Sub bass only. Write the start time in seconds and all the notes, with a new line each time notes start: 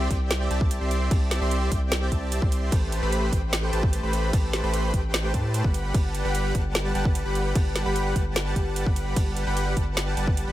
0.10 C2
0.51 C2
0.81 C2
1.11 C2
1.41 C2
1.72 C2
2.12 C2
2.42 C2
2.72 A1
3.03 A1
3.33 A1
3.73 A1
4.03 A1
4.33 A1
4.64 A1
4.94 A1
5.34 A2
5.64 G1
5.94 G1
6.25 G1
6.55 G1
6.95 G1
7.25 G1
7.55 G1
7.86 G1
8.16 G1
8.56 G1
8.86 G1
9.16 G1
9.47 G1
9.77 G1
10.17 G1
10.48 G1